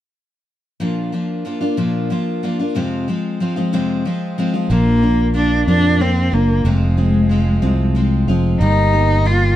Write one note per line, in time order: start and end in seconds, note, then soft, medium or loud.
0.80 1.13 A#2 medium
0.80 1.11 F3 medium
0.80 1.12 A#3 medium
0.80 1.12 D4 medium
0.80 1.13 F4 medium
1.12 1.44 F3 soft
1.12 1.44 A#3 soft
1.12 1.45 D4 soft
1.12 1.45 F4 soft
1.45 1.61 F3 soft
1.45 1.61 A#3 soft
1.45 1.60 D4 soft
1.45 1.59 F4 medium
1.61 1.77 A#3 soft
1.61 1.77 D4 soft
1.61 1.77 F4 soft
1.77 2.10 A#2 medium
1.77 2.09 F3 medium
1.77 2.09 A#3 medium
1.77 2.10 D4 medium
1.77 2.10 F4 medium
2.10 2.42 F3 soft
2.10 2.42 A#3 soft
2.10 2.43 D4 soft
2.10 2.43 F4 soft
2.43 2.59 F3 soft
2.43 2.59 A#3 medium
2.43 2.59 D4 soft
2.43 2.58 F4 medium
2.59 2.75 A#3 soft
2.59 2.76 D4 soft
2.59 2.75 F4 soft
2.75 3.07 F2 medium
2.75 3.08 C3 medium
2.75 3.07 F3 medium
2.75 3.07 G#3 medium
2.75 3.08 C4 medium
2.75 3.08 F4 medium
3.08 3.39 F3 soft
3.08 3.40 G#3 soft
3.08 3.40 C4 soft
3.08 3.41 F4 medium
3.40 3.56 F3 soft
3.40 3.56 G#3 medium
3.40 3.56 C4 medium
3.40 3.55 F4 medium
3.56 3.72 F3 soft
3.56 3.73 G#3 soft
3.56 3.72 C4 soft
3.56 3.73 F4 soft
3.73 4.05 F2 medium
3.73 4.05 C3 medium
3.73 4.04 F3 medium
3.73 4.05 G#3 medium
3.73 4.06 C4 medium
3.73 4.06 F4 medium
4.05 4.37 F3 soft
4.05 4.37 G#3 soft
4.05 4.38 C4 medium
4.05 4.38 F4 medium
4.38 4.54 F3 soft
4.38 4.54 G#3 medium
4.38 4.53 C4 medium
4.38 4.52 F4 medium
4.54 4.69 F3 soft
4.54 4.70 G#3 soft
4.54 4.70 C4 soft
4.54 4.70 F4 soft
4.70 5.64 A#1 medium
4.70 5.03 A#2 medium
4.70 5.03 F3 medium
4.70 5.02 A#3 medium
4.70 5.32 A#3 medium
4.70 5.02 D4 medium
4.70 5.01 F4 medium
5.02 5.33 A#3 soft
5.02 5.34 D4 soft
5.02 5.35 F4 soft
5.34 5.67 F3 soft
5.34 5.67 A#3 soft
5.34 5.67 D4 soft
5.34 5.66 D4 medium
5.34 5.66 F4 medium
5.67 6.29 F2 medium
5.67 6.01 A#2 soft
5.67 5.98 F3 soft
5.67 5.99 A#3 soft
5.67 6.02 D4 medium
5.67 6.00 D4 soft
5.67 6.00 F4 soft
5.99 6.32 F3 soft
5.99 6.33 A#3 soft
5.99 6.35 C4 medium
5.99 6.32 D4 soft
5.99 6.31 F4 soft
6.32 6.64 F#1 medium
6.32 6.68 A#3 medium
6.32 6.65 A#3 soft
6.32 6.65 D4 soft
6.32 6.65 F4 soft
6.65 7.59 F1 medium
6.65 6.98 F2 medium
6.65 6.98 C3 medium
6.65 6.98 F3 medium
6.65 6.97 G#3 medium
6.65 8.28 G#3 medium
6.65 6.97 C4 medium
6.65 6.96 F4 medium
6.97 7.28 F3 soft
6.97 7.29 G#3 soft
6.97 7.30 C4 soft
6.97 7.30 F4 soft
7.29 7.61 F3 soft
7.29 7.61 G#3 soft
7.29 7.61 C4 soft
7.29 7.61 F4 soft
7.62 8.25 C2 medium
7.62 7.96 F2 soft
7.62 7.96 C3 soft
7.62 7.94 F3 soft
7.62 7.95 G#3 soft
7.62 7.95 C4 medium
7.62 7.95 F4 medium
7.95 8.28 F3 medium
7.95 8.28 G#3 soft
7.95 8.27 C4 medium
7.95 8.27 F4 medium
8.27 8.59 F1 medium
8.27 8.60 F3 soft
8.27 8.60 G#3 soft
8.27 8.61 C4 soft
8.27 8.60 F4 soft
8.60 9.54 G1 medium
8.60 8.93 G3 medium
8.60 8.93 A#3 medium
8.60 9.28 D#4 medium
8.60 8.92 D#4 medium
8.60 8.91 G4 medium
8.93 9.24 A#3 soft
8.93 9.24 D#4 soft
8.93 9.25 G4 soft
9.24 9.56 G3 soft
9.24 9.56 A#3 soft
9.24 9.56 D#4 soft
9.24 9.56 F4 medium
9.24 9.56 G4 medium